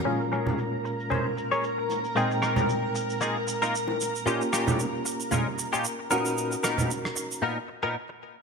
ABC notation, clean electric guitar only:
X:1
M:4/4
L:1/16
Q:"Swing 16ths" 1/4=114
K:Bbdor
V:1 name="Clean electric guitar"
[DAB] z [DAB]2 z4 [DAc] z2 [DAd] z4 | [B,EFA] z [B,EFB]2 z4 [B,EFA] z2 [B,EFB] z4 | [B,,DEFG] z [B,,DEFG]2 z4 [B,,DEFB] z2 [B,,DEFG] z2 [^A,,=B,^D^A]2- | [^A,,=B,^D^A] z [A,,B,DA]2 z4 [A,,B,DA] z2 [A,,B,DA] z4 |]